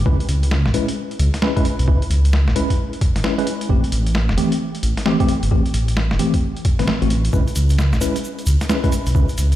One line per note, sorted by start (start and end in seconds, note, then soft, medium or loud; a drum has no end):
0.06 0.16 C#2 medium
0.06 0.15 G#3 medium
0.06 0.15 C#4 medium
0.06 0.15 E4 medium
0.06 0.15 B4 medium
0.06 kick loud
0.20 closed hi-hat medium
0.29 0.67 C#2 medium
0.29 closed hi-hat loud
0.43 closed hi-hat medium
0.51 snare loud
0.66 0.72 G#1 medium
0.66 snare medium
0.74 0.89 G#3 medium
0.74 0.89 C#4 medium
0.74 0.89 E4 medium
0.74 0.89 B4 medium
0.74 closed hi-hat loud
0.88 closed hi-hat medium
1.11 closed hi-hat soft
1.19 1.30 C#2 medium
1.19 closed hi-hat loud
1.34 snare medium
1.34 closed hi-hat medium
1.42 1.52 G#3 medium
1.42 1.52 C#4 medium
1.42 1.52 E4 medium
1.42 1.52 B4 loud
1.42 snare loud
1.56 1.66 G#3 medium
1.56 1.66 C#4 medium
1.56 1.66 E4 medium
1.56 1.66 B4 loud
1.56 kick loud
1.56 closed hi-hat medium
1.65 closed hi-hat loud
1.79 1.85 B1 medium
1.79 closed hi-hat medium
1.88 1.98 C#2 loud
1.88 1.97 G#3 medium
1.88 1.97 C#4 medium
1.88 1.97 E4 medium
1.88 1.97 B4 medium
1.88 kick loud
2.02 closed hi-hat medium
2.10 2.49 C#2 medium
2.10 closed hi-hat loud
2.25 closed hi-hat medium
2.33 snare loud
2.47 2.53 G#1 medium
2.47 snare medium
2.56 2.71 G#3 medium
2.56 2.71 C#4 medium
2.56 2.71 E4 medium
2.56 2.71 B4 medium
2.56 closed hi-hat loud
2.70 kick medium
2.70 closed hi-hat medium
2.93 closed hi-hat soft
3.01 kick loud
3.01 closed hi-hat loud
3.16 3.22 G#1 medium
3.16 snare medium
3.16 closed hi-hat medium
3.24 3.33 G#3 medium
3.24 3.33 C#4 medium
3.24 3.33 E4 medium
3.24 3.33 B4 medium
3.24 snare loud
3.38 3.46 G#3 loud
3.38 3.46 C#4 medium
3.38 3.46 E4 medium
3.38 3.46 B4 loud
3.38 closed hi-hat medium
3.47 closed hi-hat loud
3.61 closed hi-hat medium
3.69 3.80 A1 loud
3.69 3.79 E3 medium
3.69 3.79 A3 medium
3.69 3.79 C4 medium
3.69 3.79 G4 medium
3.69 kick loud
3.84 closed hi-hat medium
3.92 4.31 A1 medium
3.92 closed hi-hat loud
4.07 closed hi-hat medium
4.15 snare loud
4.29 4.35 E1 medium
4.29 snare medium
4.38 4.52 E3 medium
4.38 4.52 A3 medium
4.38 4.52 C4 medium
4.38 4.52 G4 medium
4.38 closed hi-hat loud
4.52 closed hi-hat medium
4.75 closed hi-hat soft
4.83 4.94 A1 medium
4.83 closed hi-hat loud
4.97 snare medium
4.97 closed hi-hat medium
5.06 5.15 E3 medium
5.06 5.15 A3 medium
5.06 5.15 C4 medium
5.06 5.15 G4 loud
5.06 snare loud
5.20 5.29 E3 loud
5.20 5.29 A3 medium
5.20 5.29 C4 medium
5.20 5.29 G4 loud
5.20 kick loud
5.20 closed hi-hat medium
5.28 closed hi-hat loud
5.43 5.49 G1 medium
5.43 closed hi-hat medium
5.51 5.62 A1 loud
5.51 5.61 E3 medium
5.51 5.61 A3 medium
5.51 5.61 C4 medium
5.51 5.61 G4 medium
5.51 kick loud
5.66 closed hi-hat medium
5.74 6.13 A1 medium
5.74 closed hi-hat loud
5.88 closed hi-hat medium
5.97 snare loud
6.11 6.17 E1 medium
6.11 snare medium
6.19 6.34 E3 medium
6.19 6.34 A3 medium
6.19 6.34 C4 medium
6.19 6.34 G4 medium
6.19 closed hi-hat loud
6.34 kick medium
6.34 closed hi-hat medium
6.57 closed hi-hat soft
6.65 kick loud
6.65 closed hi-hat loud
6.79 6.85 A1 medium
6.79 6.88 E3 medium
6.79 6.88 A3 medium
6.79 6.88 C4 medium
6.79 6.88 B4 medium
6.79 snare medium
6.79 closed hi-hat medium
6.88 snare loud
7.02 7.29 A1 loud
7.02 7.07 E3 medium
7.02 7.08 A3 medium
7.02 7.07 C4 medium
7.02 7.07 F#4 medium
7.02 closed hi-hat medium
7.10 closed hi-hat loud
7.25 closed hi-hat medium
7.33 7.44 C#2 loud
7.33 7.43 G#3 medium
7.33 7.43 C#4 medium
7.33 7.43 E4 medium
7.33 7.43 B4 medium
7.33 kick loud
7.33 shaker soft
7.47 closed hi-hat medium
7.47 shaker soft
7.55 7.94 C#2 medium
7.55 closed hi-hat loud
7.55 shaker medium
7.69 closed hi-hat medium
7.69 shaker soft
7.79 snare loud
7.79 shaker soft
7.92 7.99 G#1 medium
7.92 snare medium
7.92 shaker soft
8.01 8.16 G#3 medium
8.01 8.16 C#4 medium
8.01 8.16 E4 medium
8.01 8.16 B4 medium
8.01 closed hi-hat loud
8.01 shaker loud
8.16 closed hi-hat medium
8.16 shaker soft
8.24 shaker soft
8.39 closed hi-hat soft
8.39 shaker soft
8.46 8.57 C#2 medium
8.46 closed hi-hat loud
8.46 shaker medium
8.61 snare medium
8.61 closed hi-hat medium
8.61 shaker soft
8.69 8.79 G#3 medium
8.69 8.79 C#4 medium
8.69 8.79 E4 medium
8.69 8.79 B4 medium
8.69 snare loud
8.69 shaker soft
8.84 8.93 G#3 medium
8.84 8.93 C#4 medium
8.84 8.93 E4 medium
8.84 8.93 B4 loud
8.84 kick loud
8.84 closed hi-hat medium
8.84 shaker soft
8.92 closed hi-hat loud
8.92 shaker loud
9.06 9.13 B1 medium
9.06 closed hi-hat medium
9.06 shaker soft
9.15 9.25 C#2 loud
9.15 9.24 G#3 medium
9.15 9.24 C#4 medium
9.15 9.24 E4 medium
9.15 9.24 B4 medium
9.15 kick loud
9.15 shaker medium
9.29 closed hi-hat medium
9.29 shaker soft
9.38 9.55 C#2 medium
9.38 closed hi-hat loud
9.38 shaker medium
9.52 closed hi-hat medium
9.52 shaker soft